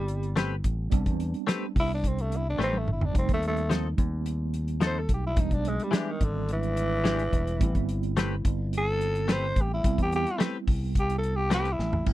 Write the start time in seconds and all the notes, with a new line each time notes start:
Already playing: G1 G3 B3 C4 E4
0.08 closed hi-hat
0.23 closed hi-hat
0.36 A3 C4 G4 B4, snare, closed hi-hat
0.64 A1, kick, closed hi-hat
0.90 C2 G3 B3 C4 D4, kick, closed hi-hat
1.06 E2, kick, closed hi-hat
1.20 closed hi-hat
1.34 closed hi-hat
1.47 A3 C4 G4 B4, snare, closed hi-hat
1.76 C2, kick, open hi-hat
1.80 E4
1.94 D4
2.04 C4, kick, closed hi-hat
2.18 A3, closed hi-hat
2.32 closed hi-hat
2.36 E4
2.49 D4
2.59 A1 A3 C4 G4 B4, snare
2.63 C4
2.73 high tom
2.78 A3
2.87 G1, mid tom
2.92 E4
3.01 D4, floor tom
3.12 F1 G3 A3 C4 D#4, kick, closed hi-hat
3.18 C4
3.29 D#2, kick, closed hi-hat
3.33 A3
3.43 closed hi-hat
3.47 A3
3.57 closed hi-hat
3.69 F3 C4 D#4 A4, snare, closed hi-hat
3.98 D#2, kick, closed hi-hat
4.26 closed hi-hat
4.54 closed hi-hat
4.68 closed hi-hat
4.81 F3 C4 D#4 A4, snare, closed hi-hat
4.86 C5
4.99 A4
5.09 B1, kick, closed hi-hat
5.14 G4
5.26 E4
5.34 E1 G3 G#3 B3 D4, kick, closed hi-hat
5.40 D#4
5.51 B1 D4, kick, closed hi-hat
5.65 G#3, closed hi-hat
5.80 G3, closed hi-hat
5.91 E3 G#3 D4 G4, snare, closed hi-hat
5.97 E3
6.10 D#3
6.21 G#1 D3, kick, closed hi-hat
6.49 E3, closed hi-hat
6.63 closed hi-hat
6.77 closed hi-hat
7.04 E3 G#3 D4 G4, snare, closed hi-hat
7.19 closed hi-hat
7.33 E1, kick, closed hi-hat
7.47 closed hi-hat
7.60 A1 G3 B3 C4 E4, kick, closed hi-hat
7.75 G1, kick, closed hi-hat
7.89 closed hi-hat
8.03 closed hi-hat
8.17 A3 C4 G4 B4, snare, closed hi-hat
8.45 G1, kick, closed hi-hat
8.73 closed hi-hat
8.78 A4
9.01 closed hi-hat
9.15 closed hi-hat
9.28 A3 C4 G4 B4, snare, closed hi-hat
9.32 C5
9.56 A1, kick, closed hi-hat
9.61 G4
9.74 E4
9.83 C2 G3 B3 C4 E4, kick, closed hi-hat
9.98 E2, kick, closed hi-hat
10.02 G4
10.12 G4, closed hi-hat
10.26 closed hi-hat
10.38 A3 C4 G4 B4, snare, closed hi-hat
10.68 C2, kick, open hi-hat
10.95 kick, closed hi-hat
10.99 G4
11.10 closed hi-hat
11.18 A4
11.23 closed hi-hat
11.36 G4
11.50 A3 C4 G4 B4, snare, closed hi-hat
11.65 closed hi-hat
11.73 E4
11.79 A1, snare
11.93 floor tom
12.05 A1 G3 B3 C4 E4, kick, crash